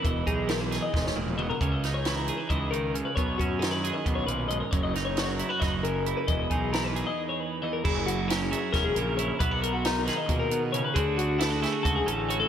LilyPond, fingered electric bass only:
\new Staff \with { instrumentName = "Fingered electric bass" } { \clef bass \time 7/8 \key e \lydian \tempo 4 = 135 e,,8 b,,4. e,,8 e,,4 | cis,2 cis,4. | b,,8 fis,4. b,,8 b,,4 | fis,,2 fis,,4. |
e,,8 b,,4. r4. | fis,,2 e,,8 ais,,4 | b,,2 b,4. | d,2 cis,8 a,,4 | }